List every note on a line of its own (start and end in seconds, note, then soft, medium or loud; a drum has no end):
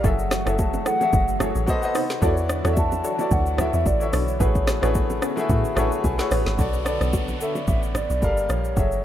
0.03 0.44 F#1 loud
0.03 1.66 E3 medium
0.03 0.37 F#3 medium
0.03 1.66 A3 medium
0.03 0.16 E4 medium
0.03 0.37 F#4 medium
0.03 1.66 F#4 medium
0.03 0.16 G#4 medium
0.03 0.38 G#4 medium
0.03 0.16 A4 loud
0.03 0.38 A4 medium
0.03 0.39 E5 medium
0.03 0.61 F#5 loud
0.03 kick loud
0.03 low conga medium
0.03 shaker medium
0.19 shaker medium
0.31 cross-stick loud
0.31 snare medium
0.31 shaker medium
0.45 0.83 F#1 loud
0.45 0.88 F#3 medium
0.45 0.56 E4 medium
0.45 0.89 F#4 medium
0.45 0.56 G#4 medium
0.45 0.89 G#4 medium
0.45 0.56 A4 medium
0.45 0.90 A4 medium
0.45 0.90 E5 medium
0.45 cross-stick loud
0.45 shaker medium
0.59 0.86 A5 loud
0.59 kick loud
0.59 high bongo medium
0.59 shaker medium
0.74 low bongo medium
0.74 shaker medium
0.86 0.98 E4 medium
0.86 0.98 G#4 medium
0.86 0.98 A4 medium
0.86 1.64 F#5 loud
0.86 cross-stick loud
0.86 shaker loud
1.00 1.32 F#3 medium
1.00 1.33 F#4 medium
1.00 1.33 G#4 medium
1.00 1.34 A4 medium
1.00 1.34 E5 medium
1.00 high bongo medium
1.00 low bongo medium
1.00 shaker medium
1.13 1.53 F#1 loud
1.13 kick loud
1.13 low conga medium
1.13 shaker medium
1.28 shaker medium
1.39 1.67 F#3 medium
1.39 1.52 E4 medium
1.39 1.66 F#4 medium
1.39 1.52 G#4 medium
1.39 1.68 G#4 medium
1.39 1.52 A4 medium
1.39 1.67 A4 medium
1.39 1.69 C#5 medium
1.39 cross-stick loud
1.39 low bongo medium
1.39 low conga medium
1.39 shaker medium
1.55 1.67 A1 medium
1.55 shaker medium
1.66 2.22 C3 medium
1.66 1.79 B3 loud
1.66 2.22 B3 medium
1.66 2.22 D#4 medium
1.66 1.79 F#4 medium
1.66 1.80 A4 medium
1.66 1.80 C5 medium
1.66 1.81 D#5 loud
1.66 kick loud
1.66 high bongo medium
1.66 shaker medium
1.81 2.14 B3 medium
1.81 2.15 F#4 medium
1.81 2.15 A4 medium
1.81 2.16 C5 medium
1.81 2.16 D#5 loud
1.81 shaker medium
1.95 2.07 D#4 medium
1.95 2.07 A4 medium
1.95 2.07 C5 medium
1.95 cross-stick loud
1.95 open hi-hat medium
1.95 shaker medium
2.10 snare medium
2.10 shaker medium
2.21 2.62 E2 loud
2.21 6.55 D3 medium
2.21 2.55 E3 medium
2.21 2.34 D4 medium
2.21 4.38 D4 medium
2.21 2.55 E4 medium
2.21 2.56 F#4 medium
2.21 2.34 F#4 medium
2.21 4.38 F#4 medium
2.21 2.34 A4 medium
2.21 2.56 A4 medium
2.21 2.34 C#5 loud
2.21 2.56 C#5 medium
2.21 2.57 D5 loud
2.21 kick loud
2.21 low conga medium
2.21 shaker medium
2.37 shaker medium
2.49 cross-stick loud
2.49 shaker medium
2.63 3.02 E2 loud
2.63 3.06 E3 medium
2.63 2.74 D4 medium
2.63 3.07 E4 medium
2.63 2.74 F#4 medium
2.63 3.07 F#4 medium
2.63 2.74 A4 medium
2.63 3.08 A4 medium
2.63 2.74 C#5 medium
2.63 3.08 C#5 medium
2.63 2.72 D5 medium
2.63 cross-stick loud
2.63 shaker medium
2.73 3.11 E5 medium
2.73 kick loud
2.73 high bongo medium
2.73 shaker medium
2.78 3.34 A5 loud
2.92 low bongo medium
2.92 shaker medium
3.04 3.16 D4 medium
3.04 3.16 F#4 medium
3.04 3.16 A4 medium
3.04 3.16 C#5 medium
3.04 shaker loud
3.18 3.51 E3 medium
3.18 3.51 E4 medium
3.18 3.51 F#4 medium
3.18 3.52 A4 medium
3.18 3.52 C#5 medium
3.18 3.52 D5 medium
3.18 high bongo medium
3.18 low bongo medium
3.18 shaker medium
3.31 3.71 D2 loud
3.31 3.76 F#5 loud
3.31 kick loud
3.31 low conga medium
3.31 shaker medium
3.46 shaker medium
3.57 3.91 E3 medium
3.57 3.92 E4 medium
3.57 3.92 F#4 medium
3.57 3.92 A4 medium
3.57 3.93 C#5 medium
3.57 3.93 E5 medium
3.57 cross-stick loud
3.57 low bongo medium
3.57 low conga medium
3.57 shaker medium
3.74 3.85 E2 medium
3.74 3.89 E5 medium
3.74 shaker medium
3.86 4.12 A1 medium
3.86 4.09 D5 medium
3.86 kick loud
3.86 high bongo medium
3.86 shaker medium
3.99 4.32 E3 medium
3.99 4.33 E4 medium
3.99 4.33 F#4 medium
3.99 4.33 A4 medium
3.99 4.34 C#5 medium
3.99 4.34 E5 medium
3.99 shaker medium
4.08 4.16 E5 medium
4.13 4.39 B1 medium
4.13 4.25 D4 medium
4.13 4.25 F#4 medium
4.13 4.25 A4 medium
4.13 4.25 C#5 medium
4.13 4.68 C#5 medium
4.13 cross-stick medium
4.13 open hi-hat medium
4.13 shaker medium
4.28 shaker medium
4.39 4.80 A1 loud
4.39 4.73 A3 medium
4.39 6.56 B3 medium
4.39 4.52 C#4 medium
4.39 4.73 E4 medium
4.39 4.52 F#4 medium
4.39 6.56 F#4 medium
4.39 4.74 F#4 medium
4.39 6.56 G#4 medium
4.39 4.52 G#4 medium
4.39 4.74 G#4 medium
4.39 4.52 B4 loud
4.39 4.74 B4 medium
4.39 4.75 C#5 medium
4.39 kick loud
4.39 low conga medium
4.39 shaker medium
4.55 kick medium
4.55 shaker medium
4.67 cross-stick loud
4.67 snare medium
4.67 shaker medium
4.81 5.20 A1 loud
4.81 5.25 A3 medium
4.81 4.92 C#4 medium
4.81 5.25 E4 medium
4.81 5.25 F#4 medium
4.81 4.92 F#4 medium
4.81 4.92 G#4 medium
4.81 5.26 G#4 medium
4.81 4.93 B4 medium
4.81 5.26 B4 medium
4.81 5.26 C#5 loud
4.81 cross-stick loud
4.81 shaker medium
4.95 kick loud
4.95 high bongo medium
4.95 shaker medium
5.10 low bongo medium
5.10 shaker medium
5.22 5.34 C#4 medium
5.22 5.34 F#4 medium
5.22 5.34 G#4 medium
5.22 5.34 B4 medium
5.22 cross-stick loud
5.22 shaker loud
5.36 5.69 A3 medium
5.36 5.69 E4 medium
5.36 5.70 F#4 medium
5.36 5.70 G#4 medium
5.36 5.70 B4 medium
5.36 5.71 E5 loud
5.36 high bongo medium
5.36 low bongo medium
5.36 shaker medium
5.49 5.64 A2 loud
5.49 kick loud
5.49 low conga medium
5.49 shaker medium
5.65 shaker medium
5.75 5.91 A1 medium
5.75 6.09 A3 medium
5.75 5.88 C#4 medium
5.75 6.10 E4 medium
5.75 5.89 F#4 medium
5.75 6.10 F#4 medium
5.75 5.89 G#4 medium
5.75 6.10 G#4 medium
5.75 5.89 B4 medium
5.75 6.11 B4 medium
5.75 6.11 C#5 loud
5.75 6.02 A5 medium
5.75 cross-stick loud
5.75 low bongo medium
5.75 low conga medium
5.75 shaker medium
5.92 shaker medium
6.04 6.18 B1 loud
6.04 6.55 G#5 medium
6.04 kick medium
6.04 high bongo medium
6.04 shaker medium
6.18 6.51 A3 medium
6.18 6.51 E4 medium
6.18 6.51 F#4 medium
6.18 6.52 G#4 medium
6.18 6.52 B4 medium
6.18 6.52 C#5 loud
6.18 snare medium
6.18 shaker medium
6.31 6.45 A1 loud
6.31 6.43 C#4 medium
6.31 6.43 F#4 medium
6.31 6.43 G#4 medium
6.31 6.43 B4 medium
6.31 cross-stick medium
6.31 open hi-hat medium
6.31 shaker medium
6.46 6.58 G#1 medium
6.46 snare medium
6.57 6.98 B1 loud
6.57 8.21 D3 medium
6.57 6.80 B3 medium
6.57 8.21 B3 medium
6.57 8.21 D4 medium
6.57 6.81 F#4 medium
6.57 6.81 A4 medium
6.57 6.82 C#5 medium
6.57 6.82 D5 medium
6.57 kick loud
6.57 downlifter medium
6.57 low conga medium
6.57 shaker medium
6.74 shaker medium
6.85 7.30 B3 medium
6.85 7.30 F#4 medium
6.85 7.31 A4 medium
6.85 7.31 C#5 medium
6.85 7.32 D5 loud
6.85 cross-stick loud
6.85 low bongo soft
6.85 shaker medium
7.01 7.38 B1 loud
7.01 cross-stick medium
7.01 shaker medium
7.13 kick loud
7.13 high bongo medium
7.13 shaker medium
7.28 low bongo medium
7.28 shaker medium
7.39 8.22 B3 medium
7.39 8.22 F#4 medium
7.39 8.21 A4 medium
7.39 7.54 A4 medium
7.39 8.23 C#5 medium
7.39 8.23 E5 medium
7.39 shaker loud
7.55 high bongo medium
7.55 low bongo medium
7.55 shaker medium
7.67 8.07 A1 loud
7.67 7.81 E5 loud
7.67 kick loud
7.67 high bongo medium
7.67 low conga medium
7.67 shaker medium
7.83 shaker medium
7.95 8.21 D5 loud
7.95 cross-stick loud
7.95 low bongo medium
7.95 low conga medium
7.95 shaker medium
8.10 8.22 B1 medium
8.10 shaker medium
8.21 8.48 G1 loud
8.21 8.76 F3 medium
8.21 8.66 G3 medium
8.21 8.76 A#3 medium
8.21 8.67 G4 medium
8.21 8.76 G4 medium
8.21 8.67 A4 medium
8.21 8.68 A#4 medium
8.21 8.52 D5 loud
8.21 8.68 F5 medium
8.21 kick medium
8.21 high bongo medium
8.21 shaker medium
8.37 shaker medium
8.49 8.75 A#1 medium
8.49 9.04 C#5 loud
8.49 cross-stick medium
8.49 shaker medium
8.65 shaker medium
8.75 9.04 F#1 loud
8.75 9.04 E3 medium
8.75 9.04 F#3 medium
8.75 9.04 A3 medium
8.75 9.04 F#4 medium
8.75 9.04 G#4 medium
8.75 9.04 A4 medium
8.75 9.04 E5 medium
8.75 kick loud
8.75 low conga medium
8.75 shaker medium
8.92 shaker medium